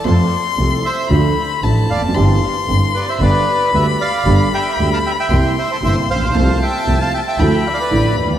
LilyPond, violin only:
\new Staff \with { instrumentName = "Violin" } { \time 4/4 \key c \major \tempo 4 = 114 c'''2 b''4 a''4 | c'''2 b''2~ | b''2 c'''2 | a''2 b''2 | }